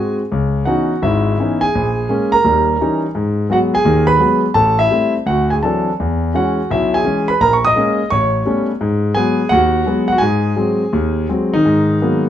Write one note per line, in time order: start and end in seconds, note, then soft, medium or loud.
0.00 0.20 G#3 soft
0.00 0.20 C4 soft
0.00 0.20 F#4 soft
0.00 0.16 G#4 medium
0.00 0.14 G#5 medium
0.32 0.63 C#2 medium
0.65 0.92 E3 soft
0.65 0.92 B3 soft
0.65 0.92 C#4 soft
0.65 0.92 D#4 medium
0.65 1.01 F#4 medium
0.65 1.00 F#5 medium
1.02 1.34 G#1 medium
1.02 1.34 G#2 medium
1.02 1.60 E4 medium
1.02 1.64 E5 medium
1.40 1.64 E3 soft
1.40 1.64 B3 soft
1.40 1.64 C#4 soft
1.40 1.64 D#4 soft
1.61 2.29 G#4 medium
1.61 2.29 G#5 medium
1.75 2.06 A#1 medium
2.09 2.34 G#3 soft
2.09 2.34 A#3 soft
2.09 2.35 C#4 medium
2.32 3.00 A#4 medium
2.32 2.99 A#5 medium
2.44 2.75 D#2 medium
2.44 2.75 G3 medium
2.81 3.05 E3 soft
2.81 3.05 G3 soft
2.81 3.05 C#4 soft
2.81 3.05 D#4 medium
3.15 3.45 G#2 medium
3.49 3.74 F#3 soft
3.49 3.74 G#3 soft
3.49 3.74 B3 medium
3.49 3.57 F#4 medium
3.49 3.58 F#5 medium
3.74 4.06 G#4 medium
3.74 4.07 G#5 medium
3.85 4.16 D#2 medium
3.85 4.16 D#3 medium
4.07 4.40 B4 medium
4.07 4.40 B5 medium
4.19 4.44 F#3 soft
4.19 4.44 G#3 soft
4.19 4.45 B3 medium
4.54 4.86 A1 medium
4.54 4.77 A4 medium
4.54 4.77 A5 medium
4.79 5.12 E4 medium
4.79 5.12 E5 medium
4.90 5.15 G3 soft
4.90 5.15 A3 soft
4.90 5.16 C4 medium
5.26 5.58 D2 medium
5.26 5.50 F#4 medium
5.26 5.49 F#5 medium
5.50 5.57 G#4 medium
5.50 5.55 G#5 medium
5.63 5.88 E3 soft
5.63 5.88 F#3 soft
5.63 5.88 C4 soft
5.63 5.89 D4 soft
5.63 5.92 A4 medium
5.63 5.91 A5 medium
6.00 6.31 E2 medium
6.34 6.59 E3 soft
6.34 6.59 G#3 soft
6.34 6.60 C#4 medium
6.34 6.69 F#4 medium
6.34 6.72 F#5 medium
6.70 7.01 B1 medium
6.70 7.01 B2 medium
6.70 6.93 E4 medium
6.70 6.95 E5 medium
6.94 7.27 G#4 medium
6.94 7.27 G#5 medium
7.04 7.29 E3 soft
7.04 7.30 G#3 soft
7.04 7.30 C#4 medium
7.28 7.41 B4 medium
7.28 7.40 B5 medium
7.40 7.71 A#1 medium
7.40 7.55 A#4 medium
7.40 7.54 A#5 medium
7.53 7.63 C#6 medium
7.65 8.09 D#5 medium
7.65 8.13 D#6 loud
7.76 8.00 G#3 soft
7.76 8.00 A#3 soft
7.76 8.01 C#4 medium
8.10 8.41 A1 medium
8.10 8.66 C#5 medium
8.10 8.64 C#6 medium
8.46 8.70 G3 soft
8.46 8.70 A3 soft
8.46 8.70 B3 soft
8.46 8.70 C#4 medium
8.81 9.11 G#2 medium
9.15 9.40 F#3 medium
9.15 9.40 G#3 soft
9.15 9.40 B3 medium
9.15 9.49 G#4 medium
9.15 9.51 G#5 medium
9.49 9.82 D#2 medium
9.49 10.07 F#4 medium
9.49 10.06 F#5 loud
9.86 10.11 F#3 soft
9.86 10.11 G#3 soft
9.86 10.11 B3 medium
10.08 10.21 F#5 medium
10.12 10.22 F#4 medium
10.18 10.52 G#2 medium
10.18 11.24 G#5 medium
10.23 11.27 G#4 medium
10.56 10.81 F#3 soft
10.56 10.82 G#3 soft
10.56 10.82 C4 soft
10.93 11.25 D#2 medium
11.29 11.55 F#3 soft
11.29 11.55 G#3 soft
11.29 11.55 C4 medium
11.53 12.23 D#3 medium
11.53 12.21 D#4 medium
11.65 11.97 G#2 medium
12.01 12.27 F#3 soft
12.01 12.27 G#3 soft
12.01 12.27 A#3 soft
12.01 12.27 B3 soft